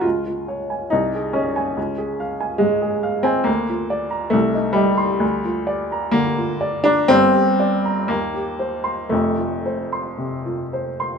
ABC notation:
X:1
M:2/4
L:1/16
Q:1/4=66
K:Db
V:1 name="Upright piano"
D,, F d a C,, A e a | D,, A f a A,, A f a | [K:Bb] D,, F d b C,, E e c' | D,, F d b D, F d b |
[G,,,G,,] G d b E,, G c c' | [F,,,F,,] F c c' C, F c c' |]
V:2 name="Upright piano"
F4 E2 D2- | D2 z2 A,3 C | [K:Bb] B,4 A,2 G,2- | G,2 z2 B,3 D |
C4 B,4 | A,4 z4 |]